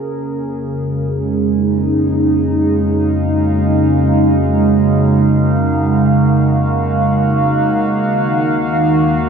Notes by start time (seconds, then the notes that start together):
Already playing: F2 C#3 A#3 C#4 F#4 G#4 A#4
0.63 G#3
1.05 D#4
2.59 F5
8.06 D#2 D#3
8.65 A#3